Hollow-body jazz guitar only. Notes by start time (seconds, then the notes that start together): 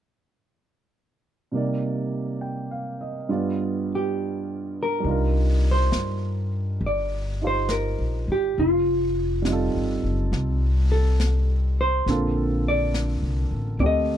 3.95 G4
4.83 A#4
5.71 C5
6.86 D5
7.47 C5
7.71 A#4
8.32 G4
8.60 F4
10.92 A4
11.81 C5
12.68 D5
13.80 D5
13.86 D#5